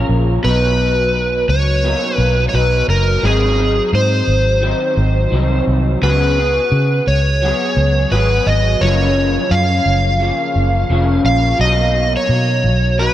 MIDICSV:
0, 0, Header, 1, 4, 480
1, 0, Start_track
1, 0, Key_signature, 6, "major"
1, 0, Tempo, 696864
1, 308, Time_signature, 4, 2, 24, 8
1, 9049, End_track
2, 0, Start_track
2, 0, Title_t, "Electric slide guitar"
2, 0, Program_c, 0, 29
2, 306, Note_on_c, 0, 71, 93
2, 1000, Note_off_c, 0, 71, 0
2, 1030, Note_on_c, 0, 73, 111
2, 1484, Note_off_c, 0, 73, 0
2, 1484, Note_on_c, 0, 71, 111
2, 1683, Note_off_c, 0, 71, 0
2, 1715, Note_on_c, 0, 73, 72
2, 1751, Note_off_c, 0, 73, 0
2, 1754, Note_on_c, 0, 71, 100
2, 1993, Note_off_c, 0, 71, 0
2, 1996, Note_on_c, 0, 70, 94
2, 2239, Note_off_c, 0, 70, 0
2, 2240, Note_on_c, 0, 68, 92
2, 2687, Note_off_c, 0, 68, 0
2, 2720, Note_on_c, 0, 72, 88
2, 3887, Note_off_c, 0, 72, 0
2, 4155, Note_on_c, 0, 71, 87
2, 4874, Note_on_c, 0, 73, 93
2, 4894, Note_off_c, 0, 71, 0
2, 5591, Note_on_c, 0, 71, 94
2, 5613, Note_off_c, 0, 73, 0
2, 5833, Note_on_c, 0, 75, 93
2, 5837, Note_off_c, 0, 71, 0
2, 6070, Note_on_c, 0, 73, 102
2, 6078, Note_off_c, 0, 75, 0
2, 6552, Note_on_c, 0, 77, 98
2, 6563, Note_off_c, 0, 73, 0
2, 7722, Note_off_c, 0, 77, 0
2, 7753, Note_on_c, 0, 77, 101
2, 7973, Note_off_c, 0, 77, 0
2, 7996, Note_on_c, 0, 75, 105
2, 8377, Note_off_c, 0, 75, 0
2, 8379, Note_on_c, 0, 73, 95
2, 8950, Note_on_c, 0, 71, 97
2, 8967, Note_off_c, 0, 73, 0
2, 9049, Note_off_c, 0, 71, 0
2, 9049, End_track
3, 0, Start_track
3, 0, Title_t, "Clean electric guitar"
3, 0, Program_c, 1, 27
3, 0, Note_on_c, 1, 49, 69
3, 0, Note_on_c, 1, 53, 74
3, 0, Note_on_c, 1, 58, 73
3, 0, Note_on_c, 1, 61, 67
3, 292, Note_off_c, 1, 49, 0
3, 295, Note_on_c, 1, 47, 82
3, 303, Note_off_c, 1, 53, 0
3, 305, Note_on_c, 1, 54, 70
3, 313, Note_off_c, 1, 61, 0
3, 315, Note_off_c, 1, 58, 0
3, 329, Note_on_c, 1, 63, 81
3, 1255, Note_off_c, 1, 47, 0
3, 1263, Note_on_c, 1, 47, 58
3, 1268, Note_off_c, 1, 54, 0
3, 1271, Note_on_c, 1, 54, 61
3, 1274, Note_on_c, 1, 58, 64
3, 1281, Note_off_c, 1, 63, 0
3, 1284, Note_on_c, 1, 63, 63
3, 1728, Note_off_c, 1, 47, 0
3, 1737, Note_on_c, 1, 47, 57
3, 1739, Note_off_c, 1, 54, 0
3, 1742, Note_on_c, 1, 54, 55
3, 1751, Note_off_c, 1, 58, 0
3, 1755, Note_off_c, 1, 63, 0
3, 1758, Note_on_c, 1, 63, 61
3, 2218, Note_on_c, 1, 44, 81
3, 2222, Note_off_c, 1, 47, 0
3, 2224, Note_off_c, 1, 54, 0
3, 2224, Note_on_c, 1, 51, 69
3, 2227, Note_on_c, 1, 54, 83
3, 2230, Note_off_c, 1, 63, 0
3, 2231, Note_on_c, 1, 60, 86
3, 2232, Note_on_c, 1, 63, 82
3, 2453, Note_off_c, 1, 63, 0
3, 2461, Note_off_c, 1, 60, 0
3, 2461, Note_on_c, 1, 63, 48
3, 2463, Note_off_c, 1, 44, 0
3, 2466, Note_off_c, 1, 51, 0
3, 2468, Note_off_c, 1, 54, 0
3, 2470, Note_on_c, 1, 60, 45
3, 2481, Note_on_c, 1, 54, 41
3, 3177, Note_on_c, 1, 51, 55
3, 3181, Note_off_c, 1, 54, 0
3, 3184, Note_on_c, 1, 54, 57
3, 3185, Note_off_c, 1, 60, 0
3, 3185, Note_off_c, 1, 63, 0
3, 3194, Note_on_c, 1, 60, 53
3, 3198, Note_on_c, 1, 63, 68
3, 3647, Note_off_c, 1, 51, 0
3, 3655, Note_on_c, 1, 51, 59
3, 3662, Note_off_c, 1, 54, 0
3, 3663, Note_off_c, 1, 60, 0
3, 3665, Note_on_c, 1, 54, 73
3, 3671, Note_off_c, 1, 63, 0
3, 3671, Note_on_c, 1, 60, 69
3, 3679, Note_on_c, 1, 63, 73
3, 4142, Note_off_c, 1, 51, 0
3, 4146, Note_on_c, 1, 49, 74
3, 4147, Note_off_c, 1, 54, 0
3, 4149, Note_off_c, 1, 60, 0
3, 4150, Note_on_c, 1, 54, 77
3, 4152, Note_on_c, 1, 59, 82
3, 4153, Note_off_c, 1, 63, 0
3, 4156, Note_on_c, 1, 66, 88
3, 4159, Note_on_c, 1, 68, 81
3, 4380, Note_off_c, 1, 68, 0
3, 4387, Note_off_c, 1, 49, 0
3, 4388, Note_on_c, 1, 68, 50
3, 4389, Note_off_c, 1, 54, 0
3, 4390, Note_off_c, 1, 59, 0
3, 4392, Note_off_c, 1, 66, 0
3, 4400, Note_on_c, 1, 66, 45
3, 4411, Note_on_c, 1, 59, 38
3, 5109, Note_off_c, 1, 68, 0
3, 5111, Note_on_c, 1, 54, 58
3, 5113, Note_off_c, 1, 59, 0
3, 5121, Note_on_c, 1, 59, 63
3, 5127, Note_off_c, 1, 66, 0
3, 5129, Note_on_c, 1, 66, 65
3, 5134, Note_on_c, 1, 68, 62
3, 5585, Note_off_c, 1, 54, 0
3, 5588, Note_on_c, 1, 54, 63
3, 5590, Note_off_c, 1, 59, 0
3, 5598, Note_on_c, 1, 59, 58
3, 5599, Note_off_c, 1, 66, 0
3, 5601, Note_off_c, 1, 68, 0
3, 5602, Note_on_c, 1, 66, 63
3, 5608, Note_on_c, 1, 68, 62
3, 6060, Note_on_c, 1, 42, 76
3, 6073, Note_off_c, 1, 59, 0
3, 6074, Note_on_c, 1, 49, 77
3, 6075, Note_off_c, 1, 54, 0
3, 6078, Note_off_c, 1, 68, 0
3, 6078, Note_on_c, 1, 53, 84
3, 6090, Note_on_c, 1, 58, 85
3, 6091, Note_off_c, 1, 66, 0
3, 6094, Note_on_c, 1, 61, 90
3, 7016, Note_off_c, 1, 49, 0
3, 7024, Note_off_c, 1, 42, 0
3, 7024, Note_on_c, 1, 49, 56
3, 7025, Note_off_c, 1, 53, 0
3, 7033, Note_on_c, 1, 53, 53
3, 7037, Note_off_c, 1, 58, 0
3, 7037, Note_off_c, 1, 61, 0
3, 7040, Note_on_c, 1, 58, 56
3, 7045, Note_on_c, 1, 61, 60
3, 7498, Note_off_c, 1, 49, 0
3, 7505, Note_off_c, 1, 53, 0
3, 7506, Note_on_c, 1, 49, 64
3, 7513, Note_on_c, 1, 53, 73
3, 7515, Note_off_c, 1, 58, 0
3, 7516, Note_off_c, 1, 61, 0
3, 7518, Note_on_c, 1, 58, 70
3, 7527, Note_on_c, 1, 61, 76
3, 7973, Note_off_c, 1, 49, 0
3, 7976, Note_on_c, 1, 47, 71
3, 7986, Note_off_c, 1, 53, 0
3, 7989, Note_on_c, 1, 54, 74
3, 7994, Note_off_c, 1, 58, 0
3, 7997, Note_off_c, 1, 61, 0
3, 7997, Note_on_c, 1, 58, 80
3, 8006, Note_on_c, 1, 63, 88
3, 8932, Note_off_c, 1, 47, 0
3, 8940, Note_on_c, 1, 47, 59
3, 8944, Note_off_c, 1, 54, 0
3, 8947, Note_on_c, 1, 54, 63
3, 8951, Note_off_c, 1, 58, 0
3, 8957, Note_off_c, 1, 63, 0
3, 8960, Note_on_c, 1, 63, 62
3, 9049, Note_off_c, 1, 47, 0
3, 9049, Note_off_c, 1, 54, 0
3, 9049, Note_off_c, 1, 63, 0
3, 9049, End_track
4, 0, Start_track
4, 0, Title_t, "Fingered electric bass"
4, 0, Program_c, 2, 33
4, 63, Note_on_c, 2, 34, 82
4, 257, Note_off_c, 2, 34, 0
4, 306, Note_on_c, 2, 35, 100
4, 1000, Note_off_c, 2, 35, 0
4, 1024, Note_on_c, 2, 37, 92
4, 1333, Note_off_c, 2, 37, 0
4, 1504, Note_on_c, 2, 35, 93
4, 1697, Note_off_c, 2, 35, 0
4, 1747, Note_on_c, 2, 35, 86
4, 1940, Note_off_c, 2, 35, 0
4, 1986, Note_on_c, 2, 30, 90
4, 2179, Note_off_c, 2, 30, 0
4, 2226, Note_on_c, 2, 32, 99
4, 2611, Note_off_c, 2, 32, 0
4, 2706, Note_on_c, 2, 44, 104
4, 2899, Note_off_c, 2, 44, 0
4, 2945, Note_on_c, 2, 32, 80
4, 3254, Note_off_c, 2, 32, 0
4, 3425, Note_on_c, 2, 32, 102
4, 3618, Note_off_c, 2, 32, 0
4, 3665, Note_on_c, 2, 36, 84
4, 3858, Note_off_c, 2, 36, 0
4, 3909, Note_on_c, 2, 36, 84
4, 4101, Note_off_c, 2, 36, 0
4, 4149, Note_on_c, 2, 37, 87
4, 4533, Note_off_c, 2, 37, 0
4, 4627, Note_on_c, 2, 49, 104
4, 4820, Note_off_c, 2, 49, 0
4, 4871, Note_on_c, 2, 37, 86
4, 5177, Note_off_c, 2, 37, 0
4, 5350, Note_on_c, 2, 37, 112
4, 5541, Note_off_c, 2, 37, 0
4, 5589, Note_on_c, 2, 32, 94
4, 5781, Note_off_c, 2, 32, 0
4, 5831, Note_on_c, 2, 32, 91
4, 6022, Note_off_c, 2, 32, 0
4, 6069, Note_on_c, 2, 30, 92
4, 6452, Note_off_c, 2, 30, 0
4, 6550, Note_on_c, 2, 42, 109
4, 6741, Note_off_c, 2, 42, 0
4, 6789, Note_on_c, 2, 30, 95
4, 7096, Note_off_c, 2, 30, 0
4, 7271, Note_on_c, 2, 30, 96
4, 7461, Note_off_c, 2, 30, 0
4, 7508, Note_on_c, 2, 29, 101
4, 7700, Note_off_c, 2, 29, 0
4, 7745, Note_on_c, 2, 34, 82
4, 7938, Note_off_c, 2, 34, 0
4, 7986, Note_on_c, 2, 35, 94
4, 8370, Note_off_c, 2, 35, 0
4, 8466, Note_on_c, 2, 47, 104
4, 8706, Note_on_c, 2, 35, 95
4, 8717, Note_off_c, 2, 47, 0
4, 9013, Note_off_c, 2, 35, 0
4, 9049, End_track
0, 0, End_of_file